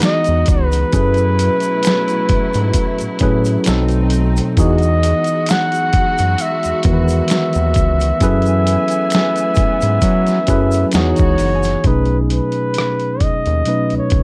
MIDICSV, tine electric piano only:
0, 0, Header, 1, 2, 480
1, 0, Start_track
1, 0, Key_signature, 4, "major"
1, 0, Tempo, 909091
1, 493, Time_signature, 4, 2, 24, 8
1, 7513, End_track
2, 0, Start_track
2, 0, Title_t, "Tine electric piano"
2, 0, Program_c, 0, 4
2, 0, Control_c, 0, 64, 127
2, 0, Note_on_c, 0, 52, 73
2, 0, Note_on_c, 0, 59, 68
2, 0, Note_on_c, 0, 63, 71
2, 0, Note_on_c, 0, 66, 59
2, 0, Note_on_c, 0, 68, 76
2, 323, Note_off_c, 0, 52, 0
2, 325, Note_off_c, 0, 59, 0
2, 326, Note_off_c, 0, 63, 0
2, 328, Note_off_c, 0, 66, 0
2, 330, Note_off_c, 0, 68, 0
2, 489, Note_on_c, 0, 54, 85
2, 493, Note_on_c, 0, 61, 71
2, 495, Note_on_c, 0, 64, 71
2, 496, Note_on_c, 0, 68, 76
2, 500, Control_c, 0, 64, 0
2, 500, Note_on_c, 0, 69, 72
2, 503, Note_on_c, 0, 71, 89
2, 605, Control_c, 0, 64, 127
2, 1221, Note_off_c, 0, 54, 0
2, 1222, Note_off_c, 0, 61, 0
2, 1223, Note_off_c, 0, 64, 0
2, 1224, Note_off_c, 0, 68, 0
2, 1226, Note_off_c, 0, 69, 0
2, 1228, Note_off_c, 0, 71, 0
2, 1693, Note_on_c, 0, 54, 83
2, 1695, Note_on_c, 0, 61, 75
2, 1698, Note_on_c, 0, 64, 81
2, 1701, Note_on_c, 0, 68, 78
2, 1704, Note_on_c, 0, 69, 76
2, 1706, Note_on_c, 0, 71, 97
2, 1930, Note_off_c, 0, 54, 0
2, 1932, Note_on_c, 0, 47, 82
2, 1934, Note_off_c, 0, 61, 0
2, 1935, Note_off_c, 0, 64, 0
2, 1936, Note_on_c, 0, 54, 70
2, 1937, Note_off_c, 0, 68, 0
2, 1939, Note_off_c, 0, 69, 0
2, 1939, Control_c, 0, 64, 0
2, 1939, Note_on_c, 0, 60, 81
2, 1940, Note_off_c, 0, 71, 0
2, 1943, Note_on_c, 0, 63, 73
2, 1946, Note_on_c, 0, 69, 93
2, 2033, Control_c, 0, 64, 127
2, 2323, Note_off_c, 0, 47, 0
2, 2325, Note_off_c, 0, 54, 0
2, 2327, Note_off_c, 0, 60, 0
2, 2329, Note_off_c, 0, 63, 0
2, 2330, Note_off_c, 0, 69, 0
2, 2414, Note_on_c, 0, 52, 89
2, 2417, Note_on_c, 0, 59, 75
2, 2420, Note_on_c, 0, 63, 75
2, 2421, Control_c, 0, 64, 0
2, 2424, Note_on_c, 0, 66, 76
2, 2426, Note_on_c, 0, 68, 91
2, 2515, Control_c, 0, 64, 127
2, 3143, Note_off_c, 0, 52, 0
2, 3144, Note_off_c, 0, 59, 0
2, 3146, Note_off_c, 0, 63, 0
2, 3148, Note_off_c, 0, 66, 0
2, 3149, Note_off_c, 0, 68, 0
2, 3612, Note_on_c, 0, 52, 75
2, 3616, Note_on_c, 0, 59, 71
2, 3620, Note_on_c, 0, 51, 62
2, 3623, Note_on_c, 0, 66, 62
2, 3625, Note_on_c, 0, 70, 55
2, 3656, Note_off_c, 0, 70, 0
2, 3661, Note_on_c, 0, 71, 80
2, 4164, Note_off_c, 0, 52, 0
2, 4166, Note_off_c, 0, 59, 0
2, 4168, Note_off_c, 0, 51, 0
2, 4169, Note_off_c, 0, 66, 0
2, 4188, Note_off_c, 0, 71, 0
2, 4334, Note_on_c, 0, 54, 90
2, 4337, Note_on_c, 0, 61, 88
2, 4339, Control_c, 0, 64, 0
2, 4339, Note_on_c, 0, 64, 96
2, 4343, Note_on_c, 0, 68, 90
2, 4345, Note_on_c, 0, 69, 94
2, 4348, Note_on_c, 0, 71, 103
2, 4436, Control_c, 0, 64, 127
2, 5063, Note_off_c, 0, 54, 0
2, 5065, Note_off_c, 0, 61, 0
2, 5065, Note_off_c, 0, 64, 0
2, 5068, Note_off_c, 0, 68, 0
2, 5069, Note_off_c, 0, 69, 0
2, 5070, Note_off_c, 0, 71, 0
2, 5531, Note_on_c, 0, 54, 83
2, 5534, Note_on_c, 0, 61, 74
2, 5536, Note_on_c, 0, 64, 83
2, 5540, Note_on_c, 0, 68, 76
2, 5541, Note_on_c, 0, 69, 74
2, 5544, Note_on_c, 0, 71, 94
2, 5772, Note_off_c, 0, 54, 0
2, 5772, Note_on_c, 0, 52, 87
2, 5773, Note_off_c, 0, 61, 0
2, 5775, Note_off_c, 0, 64, 0
2, 5775, Note_on_c, 0, 59, 67
2, 5776, Note_off_c, 0, 68, 0
2, 5777, Note_off_c, 0, 69, 0
2, 5778, Note_off_c, 0, 71, 0
2, 5778, Note_on_c, 0, 63, 76
2, 5778, Note_on_c, 0, 78, 63
2, 5780, Control_c, 0, 64, 0
2, 5783, Note_on_c, 0, 66, 82
2, 5785, Note_on_c, 0, 68, 81
2, 5861, Control_c, 0, 64, 127
2, 6074, Note_off_c, 0, 78, 0
2, 6101, Note_on_c, 0, 80, 70
2, 6163, Note_off_c, 0, 52, 0
2, 6165, Note_off_c, 0, 59, 0
2, 6166, Note_off_c, 0, 63, 0
2, 6169, Note_off_c, 0, 66, 0
2, 6170, Note_off_c, 0, 68, 0
2, 6246, Note_off_c, 0, 80, 0
2, 6255, Note_on_c, 0, 47, 66
2, 6257, Note_on_c, 0, 54, 58
2, 6260, Control_c, 0, 64, 0
2, 6260, Note_on_c, 0, 57, 62
2, 6263, Note_on_c, 0, 61, 67
2, 6266, Note_on_c, 0, 63, 67
2, 6268, Note_on_c, 0, 68, 78
2, 6360, Control_c, 0, 64, 127
2, 6984, Note_off_c, 0, 47, 0
2, 6985, Note_off_c, 0, 54, 0
2, 6986, Note_off_c, 0, 57, 0
2, 6988, Note_off_c, 0, 61, 0
2, 6989, Note_off_c, 0, 63, 0
2, 6990, Note_off_c, 0, 68, 0
2, 7212, Note_on_c, 0, 47, 57
2, 7214, Note_on_c, 0, 54, 52
2, 7216, Note_on_c, 0, 57, 51
2, 7220, Note_on_c, 0, 61, 50
2, 7222, Note_on_c, 0, 63, 56
2, 7226, Note_on_c, 0, 71, 62
2, 7513, Note_off_c, 0, 47, 0
2, 7513, Note_off_c, 0, 54, 0
2, 7513, Note_off_c, 0, 57, 0
2, 7513, Note_off_c, 0, 61, 0
2, 7513, Note_off_c, 0, 63, 0
2, 7513, Note_off_c, 0, 71, 0
2, 7513, End_track
0, 0, End_of_file